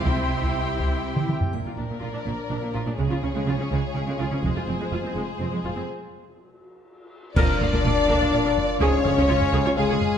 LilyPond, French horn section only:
\new Staff \with { instrumentName = "French horn section" } { \time 3/4 \key bes \mixolydian \tempo 4 = 124 <g e'>8 r2 r8 | <f d'>2. | <aes f'>2.~ | <aes f'>2. |
r2. | d'2. | des'2 aes4 | }